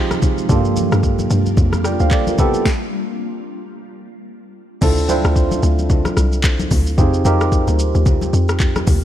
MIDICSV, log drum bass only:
0, 0, Header, 1, 2, 480
1, 0, Start_track
1, 0, Key_signature, -1, "minor"
1, 0, Tempo, 540541
1, 438, Time_signature, 4, 2, 24, 8
1, 8028, End_track
2, 0, Start_track
2, 0, Title_t, "Log drum bass"
2, 0, Program_c, 0, 39
2, 438, Note_on_c, 0, 43, 107
2, 804, Note_off_c, 0, 43, 0
2, 817, Note_on_c, 0, 43, 100
2, 1146, Note_off_c, 0, 43, 0
2, 1158, Note_on_c, 0, 43, 98
2, 1390, Note_off_c, 0, 43, 0
2, 1396, Note_on_c, 0, 41, 101
2, 1763, Note_off_c, 0, 41, 0
2, 1777, Note_on_c, 0, 38, 88
2, 1874, Note_off_c, 0, 38, 0
2, 4278, Note_on_c, 0, 38, 108
2, 4644, Note_off_c, 0, 38, 0
2, 4658, Note_on_c, 0, 38, 92
2, 4986, Note_off_c, 0, 38, 0
2, 4999, Note_on_c, 0, 38, 105
2, 5364, Note_off_c, 0, 38, 0
2, 5479, Note_on_c, 0, 36, 99
2, 5942, Note_off_c, 0, 36, 0
2, 5960, Note_on_c, 0, 38, 96
2, 6191, Note_off_c, 0, 38, 0
2, 6199, Note_on_c, 0, 41, 108
2, 6430, Note_off_c, 0, 41, 0
2, 6439, Note_on_c, 0, 41, 101
2, 6804, Note_off_c, 0, 41, 0
2, 6818, Note_on_c, 0, 38, 94
2, 7049, Note_off_c, 0, 38, 0
2, 7058, Note_on_c, 0, 39, 91
2, 7386, Note_off_c, 0, 39, 0
2, 7399, Note_on_c, 0, 41, 95
2, 7862, Note_off_c, 0, 41, 0
2, 7880, Note_on_c, 0, 39, 106
2, 8028, Note_off_c, 0, 39, 0
2, 8028, End_track
0, 0, End_of_file